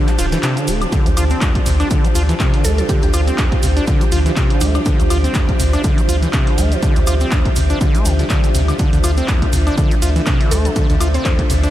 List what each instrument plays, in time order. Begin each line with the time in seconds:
Already playing: string machine D4 F4 G4, ambient pad C5 A5
0.07 acid bass A3, clap, closed hi-hat, maracas
0.19 sub bass D1, acid bass F4, snare, open hi-hat, ride, tambourine, maracas
0.32 acid bass E3, snare, closed hi-hat, tambourine, maracas
0.43 acid bass C3, snare, clap, closed hi-hat, ride, tambourine, maracas
0.57 acid bass D3, closed hi-hat, maracas
0.68 sub bass D1, acid bass A3, open hi-hat, ride, tambourine, maracas
0.82 acid bass F3, closed hi-hat, high woodblock, maracas
0.92 acid bass D3, string machine G4, kick, closed hi-hat, ride, tambourine, maracas
1.06 sub bass D2, acid bass A3, closed hi-hat, maracas
1.17 sub bass D2, acid bass F4, open hi-hat, ride, tambourine, high woodblock, maracas
1.30 acid bass C4, closed hi-hat, maracas
1.41 acid bass D2, kick, snare, clap, closed hi-hat, ride, tambourine, maracas
1.55 acid bass D3, kick, closed hi-hat
1.66 sub bass D2, acid bass C3, open hi-hat, ride, tambourine, maracas
1.80 acid bass D4, snare, closed hi-hat, high woodblock, maracas
1.91 acid bass D3, kick, closed hi-hat, ride, tambourine, maracas
2.04 acid bass A3, closed hi-hat, maracas
2.15 sub bass D2, acid bass F4, open hi-hat, ride, tambourine, maracas
2.23 ambient pad F5
2.29 acid bass E3, closed hi-hat, maracas
2.40 acid bass C3, kick, snare, clap, closed hi-hat, ride, tambourine, maracas
2.54 acid bass D3, snare, closed hi-hat
2.64 sub bass D2, acid bass A3, synth pluck A4, open hi-hat, ride, tambourine, maracas
2.78 acid bass F3, synth pluck A4, closed hi-hat, maracas
2.89 acid bass D3, synth pluck G4, kick, closed hi-hat, ride, tambourine, maracas
3.02 sub bass D2, acid bass A3, synth pluck G4, snare, closed hi-hat, maracas
3.13 sub bass D2, acid bass F4, open hi-hat, ride, tambourine, high woodblock, maracas
3.27 acid bass C4, closed hi-hat, maracas
3.38 acid bass D2, kick, snare, clap, closed hi-hat, ride, tambourine, maracas
3.52 acid bass D3, kick, closed hi-hat
3.63 sub bass D2, acid bass C3, open hi-hat, ride, tambourine, maracas
3.77 acid bass D4, closed hi-hat, maracas
3.84 acid bass D3, ambient pad E5, kick, closed hi-hat, ride, tambourine, maracas
4.01 acid bass A3, closed hi-hat, maracas
4.12 sub bass D2, acid bass F4, open hi-hat, ride, tambourine, maracas
4.26 acid bass E3, snare, closed hi-hat, maracas
4.36 acid bass C3, kick, snare, clap, closed hi-hat, ride, tambourine, maracas
4.50 acid bass D3, closed hi-hat
4.61 sub bass D2, acid bass A3, synth pluck D4, open hi-hat, ride, tambourine, maracas
4.75 acid bass F3, synth pluck D4, closed hi-hat, high woodblock, maracas
4.85 acid bass D3, kick, closed hi-hat, ride, tambourine, maracas
5.00 sub bass D2, acid bass A3, closed hi-hat, maracas
5.10 sub bass D2, acid bass F4, open hi-hat, ride, tambourine, high woodblock, maracas
5.24 acid bass C4, closed hi-hat, maracas
5.34 acid bass D2, kick, snare, clap, closed hi-hat, ride, tambourine, maracas
5.49 acid bass D3, kick, closed hi-hat
5.60 sub bass D2, acid bass C3, open hi-hat, ride, tambourine, maracas
5.73 acid bass D4, snare, closed hi-hat, high woodblock, maracas
5.84 acid bass D3, kick, closed hi-hat, ride, tambourine, maracas
5.98 acid bass A3, closed hi-hat, maracas
6.09 sub bass D2, acid bass F4, open hi-hat, ride, tambourine, maracas
6.22 acid bass E3, closed hi-hat, maracas
6.33 acid bass C3, kick, snare, clap, closed hi-hat, ride, tambourine, maracas
6.47 acid bass D3, snare, closed hi-hat
6.58 sub bass D2, acid bass A3, open hi-hat, ride, tambourine, maracas
6.72 acid bass F3, closed hi-hat, maracas
6.83 acid bass D3, kick, closed hi-hat, ride, tambourine, maracas
6.96 sub bass D2, acid bass A3, snare, closed hi-hat, maracas
7.07 sub bass D2, acid bass F4, open hi-hat, ride, tambourine, high woodblock, maracas
7.20 acid bass C4, closed hi-hat, maracas
7.31 acid bass D2, kick, snare, clap, closed hi-hat, ride, tambourine, maracas
7.45 acid bass D3, kick, closed hi-hat
7.56 sub bass D2, acid bass C3, open hi-hat, ride, tambourine, maracas
7.70 acid bass D4, closed hi-hat, maracas
7.81 acid bass D3, kick, closed hi-hat, ride, tambourine, maracas
7.95 acid bass A3, closed hi-hat, maracas
8.05 sub bass D2, acid bass D3, open hi-hat, ride, tambourine, maracas
8.19 acid bass D3, snare, closed hi-hat, maracas
8.30 acid bass D3, kick, snare, clap, closed hi-hat, ride, tambourine, maracas
8.44 acid bass D3, closed hi-hat, maracas
8.55 sub bass D2, acid bass C3, open hi-hat, ride, tambourine, maracas
8.68 acid bass D3, closed hi-hat, high woodblock, maracas
8.79 acid bass D3, string machine A4, kick, closed hi-hat, ride, tambourine, maracas
8.93 sub bass D2, acid bass D3, closed hi-hat, maracas
9.04 sub bass D2, acid bass F4, open hi-hat, ride, tambourine, high woodblock, maracas
9.17 acid bass C4, closed hi-hat, maracas
9.28 acid bass D2, kick, snare, clap, closed hi-hat, ride, tambourine, maracas
9.42 acid bass D3, kick, closed hi-hat
9.53 sub bass D2, acid bass C3, open hi-hat, ride, tambourine, maracas
9.67 acid bass D4, snare, closed hi-hat, high woodblock, maracas
9.78 acid bass D3, kick, closed hi-hat, ride, tambourine, maracas
9.91 acid bass A3, closed hi-hat, maracas
10.02 sub bass D2, acid bass F4, open hi-hat, ride, tambourine, maracas
10.16 acid bass E3, closed hi-hat, maracas
10.26 acid bass C3, kick, snare, clap, closed hi-hat, ride, tambourine, maracas
10.41 acid bass D3, snare, closed hi-hat
10.51 sub bass D2, acid bass A3, synth pluck A4, open hi-hat, ride, tambourine, maracas
10.65 acid bass F3, synth pluck A4, closed hi-hat, maracas
10.76 acid bass D3, kick, closed hi-hat, ride, tambourine, maracas
10.90 sub bass D2, acid bass D3, snare, closed hi-hat, maracas
11.01 sub bass D2, acid bass F4, open hi-hat, ride, tambourine, high woodblock, maracas
11.14 acid bass C4, synth pluck C5, closed hi-hat, maracas
11.25 acid bass D2, synth pluck C5, kick, snare, clap, closed hi-hat, ride, tambourine, maracas
11.39 acid bass D3, kick, closed hi-hat
11.50 sub bass D2, acid bass C3, open hi-hat, ride, tambourine, maracas
11.63 acid bass D4, closed hi-hat, maracas